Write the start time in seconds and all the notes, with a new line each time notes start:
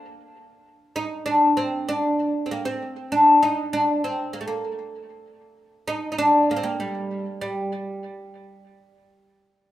0.96 D#4
1.26 D4
1.57 C4
1.89 D4
2.46 C4
2.51 A#3
2.65 C4
3.12 D4
3.43 D#4
3.73 D4
4.04 C4
4.33 A#3
4.41 A3
4.48 A#3
5.88 D#4
6.12 D#4
6.18 D4
6.51 A#3
6.56 C4
6.63 A#3
6.80 G3
7.41 G3